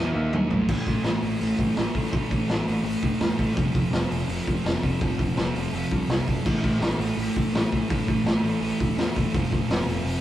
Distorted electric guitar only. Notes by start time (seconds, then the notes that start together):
Already playing: E3 B3 E4
0.13 D#3 A#3 D#4
0.49 A2 E3 A3
0.68 A2 E3 A3
0.87 E3 A3
1.04 A2 E3 A3
1.22 E3 A3
1.38 A2 E3 A3
1.75 A2 E3 A3
1.94 E3 A3
2.12 A2 E3 A3
2.30 E3 A3
2.48 A2 E3 A3
2.65 E3 A3
2.84 A2 E3 A3
3.19 A2 E3 A3
3.36 E3 A3
3.54 F2 C3 F3
3.72 C3 F3
3.90 F2 C3 F3
4.09 C3 F3
4.27 F2 C3 F3
4.64 F2 C3 F3
4.81 C3 F3
5.00 F2 C3 F3
5.18 C3 F3
5.36 F2 C3 F3
5.54 C3 F3
5.73 F2 C3 F3
6.09 F2 C3 F3
6.26 C3 F3
6.44 A2 E3 A3
6.62 E3 A3
6.79 A2 E3 A3
6.98 E3 A3
7.16 A2 E3 A3
7.53 A2 E3 A3
7.71 E3 A3
7.88 A2 E3 A3
8.06 E3 A3
8.24 A2 E3 A3
8.42 E3 A3
8.60 A2 E3 A3
8.96 A2 E3 A3
9.14 E3 A3
9.32 F2 C3 F3
9.51 C3 F3
9.70 F2 C3 F3
9.87 C3 F3
10.04 F2 C3 F3